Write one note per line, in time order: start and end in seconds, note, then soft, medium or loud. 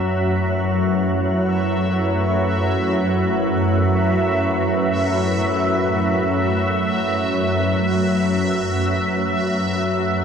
0.00 10.24 F#2 medium
0.00 10.24 F#3 medium
0.00 10.24 A3 medium
0.00 8.14 E4 medium
0.00 10.24 B4 medium
0.00 10.24 C#5 medium
0.00 10.24 E5 medium
0.00 0.61 F#5 medium
0.00 0.31 B5 medium
7.84 10.24 F#4 medium